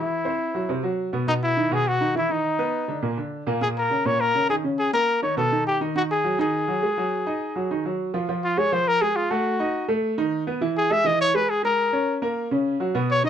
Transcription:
Already playing: E3 E4
0.00 E4
0.25 C4 C5
0.54 F#3 F#4
0.69 C3 C4
0.83 F#3 F#4
1.13 B2 B3
1.27 B2 B3 D#4
1.44 E4
1.57 D#3 D#4
1.71 B2 B3 G#4
1.88 F#4
2.01 D#3 D#4
2.15 E3 E4
2.29 D#3 D#4
2.59 B3 B4
2.88 D3 D4
3.02 A#2 A#3
3.17 D3 D4
3.47 A#2 A#3
3.61 A#2 A#3 G#4
3.78 A#4
3.90 C#3 C#4
4.05 A#2 A#3 C#5
4.21 A#4
4.35 C#3 C#4
4.49 D#3 D#4 G#4
4.64 C#3 C#4
4.79 G#4
4.93 A#3 A#4
5.22 D#3 D#4 C#5
5.37 B2 B3 A4
5.52 D#3 D#4
5.67 G4
5.81 D#3 D#4
5.95 D#3 D#4 F#4
6.11 G#4
6.24 F#3 F#4
6.39 D#3 D#4 G#4
6.68 F#3 F#4
6.83 G#3 G#4
6.97 F#3 F#4
7.27 D#4 D#5
7.56 F#3 F#4
7.71 D#3 D#4
7.85 F#3 F#4
8.14 F3 F4
8.29 F3 F4
8.44 F4
8.57 G#3 G#4 C#5
8.72 F3 F4 C5
8.88 A#4
9.02 G#3 G#4
9.16 F4
9.31 A3 F#4 A4
9.59 D#4 D#5
9.88 A3 A4
10.18 D#3 D#4
10.47 B3 B4
10.61 E3 E4
10.77 G#4
10.91 G#3 G#4 E5
11.04 E3 E4 D#5
11.21 C#5
11.34 G#3 G#4 B4
11.50 G#4
11.63 G#3 G#4 A#4
11.93 C#4 C#5
12.22 A#3 A#4
12.51 C#3 C#4
12.80 F#3 F#4
12.95 B2 B3
13.11 C#5
13.23 D#3 D#4 D#5

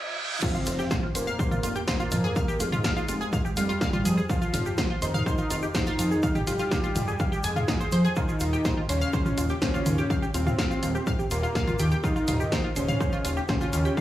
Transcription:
Already playing: F3 C4 F4, reverse cymbal, riser
0.42 C4 F4 F5, kick, crash, impact, shaker
0.55 F4 F5, shaker
0.66 F1 F4 F5, closed hi-hat, shaker
0.79 G4 G5, shaker
0.91 C5 C6, kick, snare, mid tom, shaker
1.03 F4 F5
1.15 F1 A#3 C5 C6, closed hi-hat, shaker
1.27 F5 F6, shaker
1.39 C5 C6, kick, shaker
1.51 F4 F5, mid tom, shaker
1.63 F1 F4 F5, closed hi-hat, shaker
1.75 G4 G5, shaker
1.88 F1 A#3 C5 C6, kick, snare, shaker
2.00 F4 F5, shaker
2.11 F2 F4 F5, closed hi-hat, mid tom, shaker
2.24 G#4 G#5, shaker
2.36 F5 F6, kick, shaker
2.48 G4 G5, shaker
2.60 F1 G#3 F4 F5, closed hi-hat, shaker
2.72 F4 F5, mid tom, shaker
2.84 F5 F6, kick, snare, shaker
2.97 F4 F5, shaker
3.09 F1 F4 F5, closed hi-hat, shaker
3.21 G#4 G#5, shaker
3.33 F5 F6, kick, mid tom, shaker
3.45 G4 G5, shaker
3.57 F1 G3 F4 F5, closed hi-hat, shaker
3.69 F4 F5, shaker
3.81 F1 F5 F6, kick, snare, shaker
3.93 F4 F5, mid tom, shaker
4.05 F2 G#4 G#5, closed hi-hat, shaker
4.17 G#4 G#5, shaker
4.29 F4 F5, kick, shaker
4.42 F4 F5, shaker
4.54 F1 F4 F5, closed hi-hat, mid tom, shaker
4.66 G4 G5, shaker
4.78 C5 C6, kick, snare, shaker
4.90 F4 F5
5.02 F1 D#4 C5 C6, closed hi-hat, shaker
5.14 F5 F6, mid tom, shaker
5.26 C5 C6, kick, shaker
5.38 F4 F5, shaker
5.50 F1 F4 F5, closed hi-hat, shaker
5.62 G4 G5, shaker
5.74 F1 D#4 C5 C6, kick, snare, mid tom, shaker
5.86 F4 F5, shaker
5.99 F2 F4 F5, closed hi-hat, shaker
6.11 G#4 G#5, shaker
6.23 F5 F6, kick, shaker
6.35 G4 G5, mid tom, shaker
6.47 F1 F4 G4 F5, closed hi-hat, shaker
6.59 F4 F5, shaker
6.71 F5 F6, kick, snare, shaker
6.83 F4 F5, shaker
6.96 F1 F4 F5, closed hi-hat, mid tom, shaker
7.08 G#4 G#5, shaker
7.19 F5 F6, kick, shaker
7.32 G4 G5, shaker
7.43 F1 G#4 G#5 G#6, closed hi-hat, shaker
7.56 F4 F5, mid tom, shaker
7.68 F1 D#4 D#5, kick, snare, shaker
7.80 C5 C6, shaker
7.92 F2 C5 C6, closed hi-hat, shaker
8.05 G#4 G#5, shaker
8.16 D#4 F4 F5, kick, shaker
8.29 F4 F5, shaker
8.40 D#1 F4 F5, closed hi-hat, shaker
8.53 G4 G5, shaker
8.65 C5 C6, kick, snare, mid tom, shaker
8.77 F4 F5
8.89 D#1 C#4 C5 C6, closed hi-hat, shaker
9.01 F5 F6, shaker
9.13 C5 C6, kick, shaker
9.26 F4 F5, mid tom, shaker
9.38 D#1 F4 F5, closed hi-hat, shaker
9.49 G4 G5, shaker
9.62 D#1 C#4 C5 C6, kick, snare, shaker
9.74 F4 F5, shaker
9.86 D#2 F4 F5, closed hi-hat, mid tom, shaker
9.98 G4 G5, shaker
10.10 F5 F6, kick, shaker
10.22 G4 G5, shaker
10.34 D#1 C4 F4 F5, closed hi-hat, shaker
10.46 F4 F5, mid tom, shaker
10.59 F5 F6, kick, snare, shaker
10.71 F4 F5, shaker
10.83 D#1 F4 F5, closed hi-hat, shaker
10.95 G4 G5, shaker
11.07 F5 F6, kick, mid tom, shaker
11.19 G4 G5, shaker
11.31 D#1 A#3 F4 F5, closed hi-hat, shaker
11.43 F4 F5, shaker
11.55 D#1 F5 F6, kick, snare, shaker
11.67 F4 F5, mid tom, shaker
11.79 D#2 G4 G5, closed hi-hat, shaker
11.91 G4 G5, shaker
12.04 D#4 F4 F5, kick, shaker
12.16 F4 F5, shaker
12.28 D#1 F4 F5, closed hi-hat, mid tom, shaker
12.40 G4 G5, shaker
12.52 C5 C6, kick, snare, shaker
12.64 F4 F5
12.76 D#1 C#4 C5 C6, closed hi-hat, shaker
12.88 F5 F6, mid tom, shaker
13.00 C5 C6, kick, shaker
13.12 F4 F5, shaker
13.25 D#1 F4 F5, closed hi-hat, shaker
13.37 G4 G5, shaker
13.48 D#1 C#4 C5 C6, kick, snare, mid tom, shaker
13.61 F4 F5, shaker
13.73 D#2 F4 F5, closed hi-hat, shaker
13.85 G4 G5, shaker
13.97 F5 F6, kick, shaker

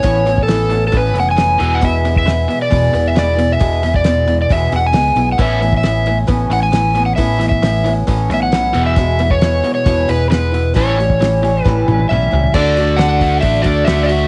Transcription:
Already playing: C#5
0.03 A1 A2 E3 B3 C#4 E4, kick, open hi-hat
0.25 A2 E3 B3 C#4 E4, open hi-hat
0.38 kick
0.43 E3 A4
0.48 A2 E3 B3 C#4 E4, snare, open hi-hat
0.70 A2 E3 B3 C#4 E4, open hi-hat
0.88 A4
0.92 A1 A2 E3 B3 C#4 E4, kick, open hi-hat
0.97 B4
1.14 F1 A2 E3 B3 C#4 E4, open hi-hat
1.20 F#5
1.31 G#5
1.36 A2 E3 B3 C#4 E4, snare, open hi-hat
1.58 E1 E2 B2 E3 G#3 B3 E4, open hi-hat
1.75 F#5
1.81 E2 B2 E3 G#3 B3 E4 E5, kick, open hi-hat
2.05 E2 B2 E3 G#3 B3 E4, open hi-hat
2.16 E5, kick
2.25 E2 B2 E3 G#3 B3 E4, snare, open hi-hat
2.48 E2 B2 E3 G#3 B3 E4, open hi-hat
2.62 D5
2.70 E1 E2 B2 E3 G#3 B3 E4, kick, open hi-hat
2.93 E1 E2 B2 E3 G#3 B3 E4, open hi-hat
3.07 E5
3.15 E2 B2 E3 G#3 B3 E4 D5, snare, open hi-hat
3.36 E2 B2 E3 G#3 B3 E4, open hi-hat
3.52 E5
3.59 E1 E2 B2 E3 G#3 B3 E4, kick, open hi-hat
3.82 E2 B2 E3 G#3 B3 E4, snare, open hi-hat
3.94 D5, kick
4.04 E2 B2 E3 G#3 B3 E4, snare, open hi-hat
4.26 E2 B2 E3 G#3 B3 E4, open hi-hat
4.42 D5
4.49 E1 E2 B2 E3 G#3 B3 E4 E5, kick, open hi-hat
4.72 E1 E2 B2 E3 G#3 B3 E4 F#5, open hi-hat
4.86 G#5
4.92 C#2 E2 B2 E3 G#3 B3 E4, snare, open hi-hat
5.16 B1 E2 B2 E3 G#3 B3 E4, open hi-hat
5.32 F#5
5.38 A1 A2 E3 A3 B3 C#4 E4 E5, kick, open hi-hat
5.61 A2 E3 B3 C#4 E4, open hi-hat
5.73 kick
5.77 E5
5.83 A2 E3 B3 C#4 E4, snare, open hi-hat
6.05 A2 E3 B3 C#4 E4, open hi-hat
6.27 A1 A2 E3 B3 C#4 E4, kick, open hi-hat
6.50 A1 A2 E3 B3 C#4 E4 F#5, open hi-hat
6.63 G#5
6.71 A2 E3 B3 C#4 E4, snare, open hi-hat
6.94 A2 E3 B3 C#4 E4, open hi-hat
7.06 F#5
7.16 A1 A2 E3 B3 C#4 E4 E5, kick, open hi-hat
7.39 A2 E3 B3 C#4 E4, snare, open hi-hat
7.49 E5, kick
7.61 A2 E3 B3 C#4 E4, snare, open hi-hat
7.83 A2 E3 B3 C#4 E4, open hi-hat
8.07 A1 A2 E3 B3 C#4 E4, kick, open hi-hat
8.28 B1 A2 E3 B3 C#4 E4, open hi-hat
8.34 E5
8.43 F#5
8.52 A2 E3 B3 C#4 E4, snare, open hi-hat
8.73 E1 E2 B2 E3 G#3 B3 E4, open hi-hat
8.86 E5
8.96 E2 B2 E3 G#3 B3 E4, kick, open hi-hat
9.19 E2 B2 E3 G#3 B3 E4, open hi-hat
9.30 C#5, kick
9.41 E2 B2 E3 G#3 B3 E4, snare, open hi-hat
9.63 E2 B2 E3 G#3 B3 E4, open hi-hat
9.75 C#5
9.86 E1 E2 B2 E3 G#3 B3 E4, kick, open hi-hat
10.08 E1 E2 B2 E3 G#3 B3 E4 B4, open hi-hat
10.30 E2 B2 E3 G#3 B3 E4 B4, snare, open hi-hat
10.52 E2 B2 E3 G#3 B3 E4, open hi-hat
10.74 A1 A2 E3 G3 C#4 E4 C#5, kick, open hi-hat
10.97 A2 E3 G3 C#4 E4, open hi-hat
11.10 kick
11.19 A2 E3 G3 C#4 E4, snare, open hi-hat
11.42 A2 E3 G3 C#4 E4, open hi-hat
11.64 A1 A2 E3 G3 C#4 E4 B4, kick, snare
11.88 A1 A2 E3 G3 C#4 E4, high tom
11.99 high tom
12.09 B1 A2 E3 G3 C#4 E4 E5, mid tom
12.31 C#2 A2 E3 G3 C#4 E4, floor tom
12.44 floor tom
12.54 D2 D3 A3 D4 F#4 D5, kick, crash
12.76 A3 D4 F#4, open hi-hat
12.96 D3 A3 D4 F#4 F#5, snare, open hi-hat
13.01 D4
13.18 A3 D4 F#4, kick, open hi-hat
13.40 A1 D3 A3 D4 F#4 E5, kick, open hi-hat
13.55 snare
13.62 D2 D3 A3 D4 F#4 D5, kick, open hi-hat
13.85 D2 D3 A3 D4 F#4 E5, snare, open hi-hat
13.89 A3
14.04 D5 E5
14.08 A3 D4 F#4, open hi-hat

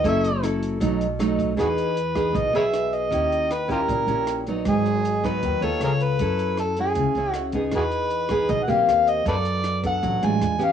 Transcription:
0.04 F#1 F#3 C#4 E4 A4, kick, closed hi-hat
0.09 E5
0.24 closed hi-hat
0.43 C#4 E4 A4, cross-stick, closed hi-hat
0.63 closed hi-hat
0.80 B1 B2 F#3 A3 D#4, kick, closed hi-hat
1.01 closed hi-hat
1.19 F#3 A3 D#4, cross-stick, closed hi-hat
1.39 kick, closed hi-hat
1.57 E2 E3 B3 D#4 F#4 G#4 B4, kick, cross-stick, closed hi-hat
1.78 closed hi-hat
1.97 closed hi-hat
2.15 B3 D#4 G#4, kick, cross-stick, closed hi-hat
2.32 B1 B2, kick, closed hi-hat
2.37 D#5
2.53 B1 B3 G#4 B4 C#5 E5, closed hi-hat
2.74 cross-stick, closed hi-hat
2.93 D#5, closed hi-hat
3.11 D#2 D#3 C#4 E4 G4, kick, closed hi-hat
3.32 closed hi-hat
3.51 B4, cross-stick, closed hi-hat
3.68 C#4 E4 F4 G4 A#4, kick, closed hi-hat
3.88 A#1 A#2, kick, closed hi-hat
4.07 A#1 C#4 E4 G4, closed hi-hat
4.27 cross-stick, closed hi-hat
4.47 F#3 B3 D#4, closed hi-hat
4.65 G#1 G#2 G#4, kick, cross-stick, closed hi-hat
4.86 closed hi-hat
5.05 closed hi-hat
5.24 F#3 B3 D#4 B4, kick, cross-stick, closed hi-hat
5.43 D#2 D#3, kick, closed hi-hat
5.61 D#2 B3 F4 A4 C#5, closed hi-hat
5.80 C#2, cross-stick, closed hi-hat
5.84 G#4 A#4 C#5
6.00 B4, closed hi-hat
6.19 F#2 F#3 C#4 E4 A4, kick, closed hi-hat
6.39 closed hi-hat
6.57 A4, cross-stick, closed hi-hat
6.77 C#4 E4 G#4, closed hi-hat
6.95 C#2 C#3, kick, closed hi-hat
7.15 C#2 C#4 E4, closed hi-hat
7.32 F#4, cross-stick, closed hi-hat
7.52 B3 D#4 G#4, kick, closed hi-hat
7.71 E2 E3, kick, cross-stick, closed hi-hat
7.76 F#4 G#4 B4
7.92 closed hi-hat
8.10 closed hi-hat
8.29 B3 D#4 G#4, kick, cross-stick, closed hi-hat
8.48 B1 B2 D#5, kick, closed hi-hat
8.63 F#5
8.67 B1 A#3 C4 G4 F5, closed hi-hat
8.88 D#2, cross-stick, closed hi-hat
9.07 D#5, closed hi-hat
9.25 F#2 F#3 B3 D4 A4 B4 D5, kick, closed hi-hat
9.45 closed hi-hat
9.64 cross-stick, closed hi-hat
9.83 B3 D4 A4 F#5, kick, closed hi-hat
10.03 A1 F#3, kick, closed hi-hat
10.22 A1 G#3 D4 F4 G#5, closed hi-hat
10.40 E2, cross-stick, closed hi-hat
10.59 B3 C#4 G4, closed hi-hat
10.64 F5

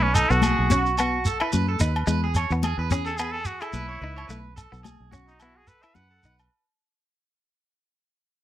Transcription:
Already playing: B1 B4
0.03 C#4
0.14 D#4 A4, low agogo, shekere
0.30 B1 B3 F#4, shekere
0.42 G#4, high conga, low agogo, shekere
0.59 B1
0.70 C#4 F#4, high conga, shekere
0.86 shekere
0.98 B3 F#4, muted conga, low agogo, shekere
1.25 A4, muted conga, shekere
1.40 E4 B4, low agogo
1.52 F#2 B4, high conga, shekere
1.68 A4
1.80 D#2 D#4 B4, muted conga, shekere
1.96 low agogo
2.07 E2 G#3 B4, shekere
2.24 G#4
2.35 C#5, low agogo, shekere
2.50 E2 B3, shekere
2.63 G#4, high conga, low agogo, shekere
2.78 E2 B4
2.91 C#4 G#4, high conga, shekere
3.06 G#4 A4, shekere
3.17 B3 G#4 B4, muted conga, low agogo, shekere
3.32 G#4 A4
3.45 F#4, muted conga, shekere
3.60 E4 G#4 A4, low agogo, shekere
3.73 B1 B4, high conga, shekere
3.89 C#5
4.01 C#2 D#4 B4, muted conga
4.16 C#5, low agogo
4.28 B1 A3 B4, muted conga, shekere
4.56 A4, low agogo, shekere
4.72 B1 B3, shekere
4.83 G#4, high conga, low agogo, shekere
5.00 B1
5.11 C#4 F#4, high conga, shekere
5.28 D#4, shekere
5.39 B3 E4 F#4, muted conga, low agogo, shekere
5.57 G#4
5.67 A4 B4, muted conga, shekere
5.83 E4 B4 E5, low agogo, shekere
5.95 F#2 B4 F#5, high conga, shekere
6.11 A4
6.23 B1 D#4 B4, muted conga, shekere
6.39 low agogo, shekere

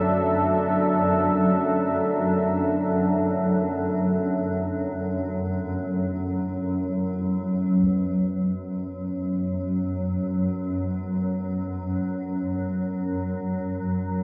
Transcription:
Already playing: F#2 F#3 B3 D4 A4 B4 E5
7.83 F#2 F#3 B3 B4, taiko

